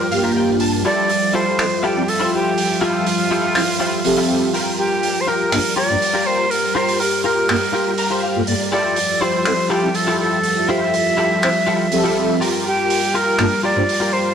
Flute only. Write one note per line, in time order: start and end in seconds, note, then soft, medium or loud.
0.00 0.32 A#4 medium
0.86 1.37 D5 loud
1.35 1.86 C5 medium
1.84 2.10 G4 medium
2.09 2.33 A4 medium
2.34 2.84 G4 medium
2.83 4.54 F4 medium
4.78 5.22 G4 medium
5.21 5.30 C5 medium
5.28 5.76 A#4 medium
5.77 6.28 D5 loud
6.26 6.52 C5 loud
6.50 6.76 A#4 medium
6.74 7.01 C5 medium
6.99 7.24 A#4 medium
7.24 8.19 A#4 medium
8.72 9.23 D5 medium
9.21 9.72 C5 medium
9.71 9.97 G4 medium
9.96 10.19 A4 medium
10.20 10.71 A4 medium
10.70 12.41 E5 loud
12.66 13.17 G4 medium
13.15 13.63 A#4 medium
13.64 14.14 D5 loud
14.13 14.34 C5 medium